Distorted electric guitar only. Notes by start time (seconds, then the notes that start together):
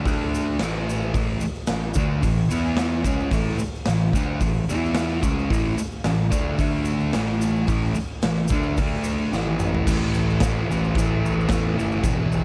0.06 D3 A3 D4
0.60 A2 E3 A3
1.16 A2 E3 A3
1.42 muted distorted electric guitar stroke
1.70 A2 E3
1.96 D3 A3 D4
2.24 A2 E3
2.50 E3 B3 E4
3.05 C#3 G#3 C#4
3.31 A2 E3 A3
3.58 muted distorted electric guitar stroke
3.88 A2 E3
4.15 D3 A3 D4
4.42 A2 E3
4.69 E3 B3 E4
5.23 C#3 G#3 C#4
5.50 A2 E3 A3
5.77 muted distorted electric guitar stroke
6.06 A2 E3
6.30 D3 A3 D4
6.59 D3 A3 D4
7.13 A2 E3 A3
7.67 A2 E3 A3
7.96 muted distorted electric guitar stroke
8.24 A2 E3
8.50 D3 A3 D4
8.79 D3 A3 D4
9.33 A2 E3 A3
9.88 A2 E3 A3
10.43 A2 E3 A3
10.68 A2 E3 A3
10.96 A2 E3 A3
11.50 A2 E3 A3
11.78 A2 E3 A3
12.03 E2 B2 E3